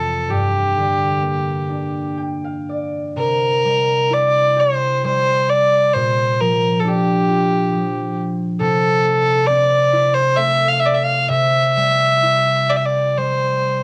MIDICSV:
0, 0, Header, 1, 3, 480
1, 0, Start_track
1, 0, Tempo, 920245
1, 147, Time_signature, 3, 2, 24, 8
1, 627, Tempo, 978793
1, 1587, Tempo, 938967
1, 2547, Tempo, 906344
1, 3507, Tempo, 881057
1, 5427, Tempo, 925926
1, 6387, Tempo, 955414
1, 7194, End_track
2, 0, Start_track
2, 0, Title_t, "Fiddle"
2, 0, Program_c, 0, 110
2, 0, Note_on_c, 0, 69, 67
2, 156, Note_on_c, 0, 67, 76
2, 163, Note_off_c, 0, 69, 0
2, 1104, Note_off_c, 0, 67, 0
2, 1598, Note_on_c, 0, 70, 81
2, 2083, Note_on_c, 0, 74, 83
2, 2091, Note_off_c, 0, 70, 0
2, 2322, Note_on_c, 0, 72, 72
2, 2329, Note_off_c, 0, 74, 0
2, 2551, Note_off_c, 0, 72, 0
2, 2560, Note_on_c, 0, 72, 83
2, 2789, Note_on_c, 0, 74, 82
2, 2797, Note_off_c, 0, 72, 0
2, 3023, Note_on_c, 0, 72, 78
2, 3031, Note_off_c, 0, 74, 0
2, 3270, Note_on_c, 0, 70, 77
2, 3278, Note_off_c, 0, 72, 0
2, 3479, Note_on_c, 0, 69, 46
2, 3487, Note_off_c, 0, 70, 0
2, 3523, Note_on_c, 0, 67, 64
2, 3531, Note_off_c, 0, 69, 0
2, 4238, Note_off_c, 0, 67, 0
2, 4464, Note_on_c, 0, 69, 89
2, 4930, Note_on_c, 0, 74, 95
2, 4938, Note_off_c, 0, 69, 0
2, 5298, Note_on_c, 0, 72, 90
2, 5306, Note_off_c, 0, 74, 0
2, 5421, Note_on_c, 0, 76, 93
2, 5429, Note_off_c, 0, 72, 0
2, 5586, Note_on_c, 0, 77, 82
2, 5594, Note_off_c, 0, 76, 0
2, 5645, Note_on_c, 0, 76, 84
2, 5653, Note_off_c, 0, 77, 0
2, 5679, Note_on_c, 0, 74, 75
2, 5687, Note_off_c, 0, 76, 0
2, 5721, Note_on_c, 0, 76, 72
2, 5729, Note_off_c, 0, 74, 0
2, 5778, Note_on_c, 0, 77, 74
2, 5785, Note_off_c, 0, 76, 0
2, 5901, Note_off_c, 0, 77, 0
2, 5907, Note_on_c, 0, 76, 102
2, 6622, Note_on_c, 0, 74, 64
2, 6629, Note_off_c, 0, 76, 0
2, 6657, Note_on_c, 0, 76, 54
2, 6664, Note_off_c, 0, 74, 0
2, 6704, Note_on_c, 0, 74, 61
2, 6711, Note_off_c, 0, 76, 0
2, 6863, Note_on_c, 0, 72, 65
2, 6870, Note_off_c, 0, 74, 0
2, 7194, Note_off_c, 0, 72, 0
2, 7194, End_track
3, 0, Start_track
3, 0, Title_t, "Harp"
3, 0, Program_c, 1, 46
3, 0, Note_on_c, 1, 41, 62
3, 0, Note_on_c, 1, 48, 41
3, 0, Note_on_c, 1, 52, 50
3, 0, Note_on_c, 1, 60, 52
3, 148, Note_on_c, 1, 43, 56
3, 173, Note_off_c, 1, 41, 0
3, 173, Note_off_c, 1, 48, 0
3, 173, Note_off_c, 1, 52, 0
3, 396, Note_on_c, 1, 50, 36
3, 630, Note_on_c, 1, 58, 38
3, 866, Note_on_c, 1, 62, 39
3, 978, Note_off_c, 1, 60, 0
3, 1105, Note_on_c, 1, 79, 46
3, 1236, Note_on_c, 1, 77, 46
3, 1358, Note_on_c, 1, 74, 42
3, 1587, Note_on_c, 1, 48, 50
3, 1612, Note_off_c, 1, 43, 0
3, 1612, Note_off_c, 1, 50, 0
3, 1835, Note_on_c, 1, 55, 37
3, 1878, Note_off_c, 1, 79, 0
3, 2069, Note_on_c, 1, 64, 41
3, 2100, Note_off_c, 1, 77, 0
3, 2234, Note_off_c, 1, 58, 0
3, 2267, Note_off_c, 1, 62, 0
3, 2292, Note_off_c, 1, 74, 0
3, 2306, Note_on_c, 1, 67, 47
3, 2541, Note_off_c, 1, 55, 0
3, 2547, Note_on_c, 1, 55, 46
3, 3030, Note_on_c, 1, 46, 58
3, 3054, Note_off_c, 1, 48, 0
3, 3054, Note_off_c, 1, 55, 0
3, 3269, Note_on_c, 1, 53, 42
3, 3301, Note_off_c, 1, 64, 0
3, 3504, Note_on_c, 1, 62, 47
3, 3544, Note_off_c, 1, 67, 0
3, 3743, Note_on_c, 1, 65, 53
3, 3974, Note_off_c, 1, 53, 0
3, 3980, Note_on_c, 1, 53, 45
3, 4461, Note_on_c, 1, 48, 64
3, 4495, Note_off_c, 1, 46, 0
3, 4495, Note_off_c, 1, 53, 0
3, 4701, Note_on_c, 1, 57, 42
3, 4940, Note_on_c, 1, 60, 49
3, 5029, Note_off_c, 1, 62, 0
3, 5117, Note_off_c, 1, 65, 0
3, 5184, Note_on_c, 1, 64, 53
3, 5423, Note_off_c, 1, 57, 0
3, 5426, Note_on_c, 1, 57, 47
3, 5897, Note_off_c, 1, 48, 0
3, 5903, Note_on_c, 1, 48, 68
3, 6148, Note_on_c, 1, 55, 45
3, 6385, Note_off_c, 1, 64, 0
3, 6387, Note_on_c, 1, 64, 46
3, 6515, Note_off_c, 1, 60, 0
3, 6626, Note_on_c, 1, 67, 50
3, 6856, Note_off_c, 1, 55, 0
3, 6862, Note_on_c, 1, 55, 42
3, 7128, Note_off_c, 1, 57, 0
3, 7194, Note_off_c, 1, 48, 0
3, 7194, Note_off_c, 1, 55, 0
3, 7194, Note_off_c, 1, 64, 0
3, 7194, Note_off_c, 1, 67, 0
3, 7194, End_track
0, 0, End_of_file